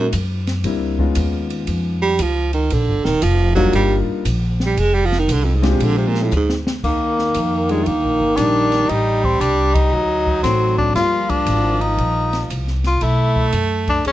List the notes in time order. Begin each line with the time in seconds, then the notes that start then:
Already playing: A#2 G#3 A#3 C#4 D#4 F#4
0.13 F#2, hi-hat pedal, ride
0.47 snare, ride
0.64 C#2 G3 A#3 C4 D4 E4, ride
0.99 G#3 B3 C#4 D#4 F4, kick
1.15 D#2, hi-hat pedal, ride
1.50 ride
1.67 F2, ride
2.02 G3
2.19 C#2 F3, hi-hat pedal, ride
2.53 D#3, ride
2.70 A#1 D3, ride
2.88 G1
3.05 D#1 D#3, snare
3.22 F1 F3, hi-hat pedal, ride
3.55 F#3 G3 A#3 D4 D#4 F4, kick, ride
3.73 G1 G3, ride
4.08 muted upright bass stroke
4.25 A#1, hi-hat pedal, ride
4.60 snare
4.66 G3
4.76 F1 G#3, ride
4.94 G3
5.05 F3
5.12 snare
5.19 D#3
5.28 C2 D3, hi-hat pedal, ride
5.44 F2
5.56 G#2
5.62 G#3 C4 D4 F4 G4, snare, ride
5.71 C3
5.80 A#1, ride
5.84 D3
5.97 C3
6.07 A#2
6.15 snare
6.23 A2
6.31 D2, hi-hat pedal
6.36 G#2
6.49 snare
6.67 snare
6.84 D#2 D#3 A#3, kick, crash
7.18 snare
7.34 F2, hi-hat pedal, ride
7.69 G3 G#3 A#3 D4 F4, ride
7.83 D2 A3 A#3, ride
8.04 A#1
8.20 G1
8.36 A#1 G3 A#3 D4 G4, hi-hat pedal, ride
8.72 snare, ride
8.89 A1 G3 D#4, ride
9.24 C4, kick
9.40 C2 D4, hi-hat pedal, ride
9.74 D#4, kick, ride
9.92 D2 F#3
10.27 kick
10.43 A1 F#3 A3 C4 D#4, snare, hi-hat pedal, ride
10.78 D4, kick
10.94 G1 F3 G3 A#3 F4 D5, snare, ride
11.29 D4, kick, ride
11.46 G#1, hi-hat pedal, ride
11.81 D#4, ride
11.98 A#1, ride
12.33 snare, ride
12.50 C2, hi-hat pedal, ride
12.67 snare
12.84 F4, snare, ride
13.01 B1 A3 E4, ride
13.36 kick
13.52 F#2, hi-hat pedal, ride
13.87 D4, kick, ride
14.05 E2 G#3 C#4, ride